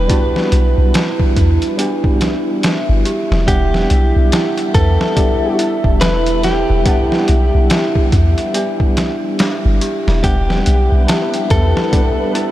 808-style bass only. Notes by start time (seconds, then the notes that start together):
0.52 B1
0.78 B1
1.37 E2
2.89 G1
3.31 E1
3.48 E1
3.91 B1
4.16 B1
4.75 E2
5.85 E1
6.70 E1
7.29 B1
7.55 B1
8.13 E2
9.65 G1
10.08 E1
10.24 E1
10.67 B1
10.92 B1
11.51 E2